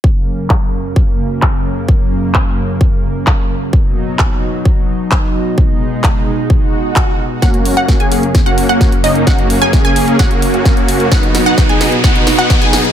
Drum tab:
HH |----------------|----------------|----------------|----------------|
CP |----x-------x---|----x-------x---|----x-------x---|----x-------x---|
SD |----------------|----------------|----------------|----------------|
BD |o---o---o---o---|o---o---o---o---|o---o---o---o---|o---o---o---o---|

HH |xxoxxxoxxxoxxxox|xxoxxxoxxxoxxxox|xxoxxxoxxxo-xxox|
CP |----------------|----------------|----------------|
SD |o---o---o---o---|o---o---o---o---|o-o-o-o-o-o-o-o-|
BD |o---o---o---o---|o---o---o---o---|o---o---o---o---|